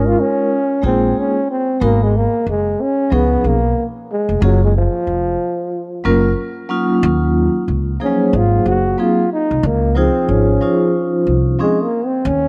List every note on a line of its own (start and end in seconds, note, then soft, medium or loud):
0.00 0.13 G#1 medium
0.00 0.45 G#3 medium
0.00 0.45 C#4 medium
0.00 0.45 D#4 medium
0.00 0.45 F4 medium
0.00 0.46 A#4 medium
0.07 0.21 F4 medium
0.20 0.84 C#4 loud
0.82 1.10 A#1 medium
0.82 1.31 G#3 medium
0.82 1.31 A#3 medium
0.82 1.31 D#4 medium
0.82 1.32 F4 medium
0.82 1.32 G#4 medium
0.86 1.20 C4 loud
1.19 1.50 C#4 medium
1.51 1.85 C4 medium
1.80 2.25 G#1 loud
1.80 2.05 G#3 medium
1.80 2.05 A#3 medium
1.80 2.06 B3 medium
1.80 2.06 D#4 medium
1.80 2.06 F#4 medium
1.80 2.07 A#4 medium
2.03 2.18 G#3 medium
2.17 2.48 A#3 medium
2.46 2.74 F#1 medium
2.46 2.83 G#3 medium
2.81 3.15 C#4 medium
3.10 3.39 C#2 loud
3.10 3.51 F3 medium
3.10 3.52 B3 medium
3.10 3.48 B3 medium
3.10 3.52 C#4 medium
3.10 3.52 D#4 medium
3.10 3.53 G#4 medium
3.44 3.71 B1 medium
3.44 3.85 A#3 medium
4.12 4.41 G#3 medium
4.29 4.40 F1 medium
4.40 4.85 F#1 loud
4.40 4.66 F#3 medium
4.40 4.66 A#3 medium
4.40 4.67 C#4 medium
4.40 4.67 F4 medium
4.40 4.67 G#4 medium
4.45 4.62 F#3 medium
4.64 4.75 G#3 medium
4.78 6.35 F3 medium
5.07 5.34 F1 medium
6.04 6.32 F#1 medium
6.04 6.29 F#3 medium
6.04 6.30 A#3 medium
6.04 6.30 C#4 medium
6.04 6.30 F4 medium
6.04 6.30 A#4 medium
6.69 7.62 F#3 medium
6.69 7.62 A#3 medium
6.69 7.63 C#4 medium
6.69 7.63 D#4 medium
6.69 7.63 F4 medium
7.03 7.46 D#2 loud
7.68 7.95 C#2 medium
8.00 8.08 F3 medium
8.00 8.93 A#3 medium
8.00 8.94 D#4 medium
8.00 8.94 G#4 medium
8.00 8.93 C5 medium
8.04 8.96 F#3 medium
8.04 8.38 C#4 medium
8.33 8.60 G#1 loud
8.33 8.68 F4 loud
8.66 8.93 F#1 medium
8.66 9.02 F#4 loud
8.98 9.23 F#3 medium
8.98 9.23 A#3 medium
8.98 9.23 C4 medium
8.98 9.24 D#4 medium
8.98 9.32 F4 loud
8.98 9.24 G#4 medium
9.33 9.68 D#4 medium
9.51 9.62 C2 medium
9.63 10.07 C#2 loud
9.63 10.00 A#3 loud
9.95 10.59 F3 medium
9.95 10.33 C4 medium
9.95 10.61 D#4 medium
9.95 10.61 F4 medium
9.95 10.90 G#4 medium
9.95 10.60 C5 medium
10.29 10.56 G#1 medium
10.29 10.95 C#4 medium
10.61 11.54 F3 medium
10.61 11.54 C#4 medium
10.61 11.55 D#4 medium
10.61 11.55 F4 medium
10.61 11.54 C5 medium
11.27 11.54 C2 medium
11.59 11.84 F3 medium
11.59 11.85 G#3 medium
11.59 11.84 C4 medium
11.59 11.84 C#4 medium
11.59 11.85 D#4 medium
11.59 11.85 G#4 medium
11.83 12.07 A#3 medium
12.05 12.28 C4 medium
12.25 12.48 D#2 loud
12.25 12.48 C#4 loud